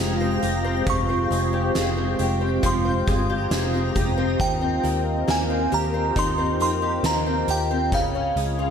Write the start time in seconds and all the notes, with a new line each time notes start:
Already playing: F3 G#3 C4 F4 G4 F5 A#5 D#6
0.00 F1 G#3
0.21 C4
0.42 F1 G4, closed hi-hat
0.64 C4
0.87 F1 F3 C#6, kick, closed hi-hat
1.09 C4
1.31 F1 G#3, closed hi-hat
1.53 G4
1.73 F1 G#3 G5, snare, closed hi-hat
1.97 C4
2.19 F1 G4, closed hi-hat
2.41 C4
2.63 F1 F3 C6, kick, closed hi-hat
2.85 C4 A#5
3.07 G1 G#3, kick, closed hi-hat
3.30 G4
3.51 F1 G#3, snare, closed hi-hat
3.69 D#6
3.74 C4
3.95 F1 G4, kick, closed hi-hat
4.18 C4
4.39 D#2 D#3 A#4 D#5 G5, kick, closed hi-hat
4.61 C4
4.83 D#2 A#3, closed hi-hat
5.28 D#2 A#3 G#5, snare, closed hi-hat
5.50 C4
5.72 D#2 G4 A#5, closed hi-hat
5.94 C4
6.16 D#2 D#3 C6, kick, closed hi-hat
6.38 C4
6.60 F2 A#3 C6, closed hi-hat
6.82 G4
7.03 D#2 A#3 A#5, snare, closed hi-hat
7.26 C4
7.48 D#2 G4 G5, closed hi-hat
7.71 C4
7.92 C#2 C#3 C#4 F4 G#4 F5, kick, closed hi-hat
8.15 C#4
8.36 C#2 G#3, closed hi-hat
8.59 F4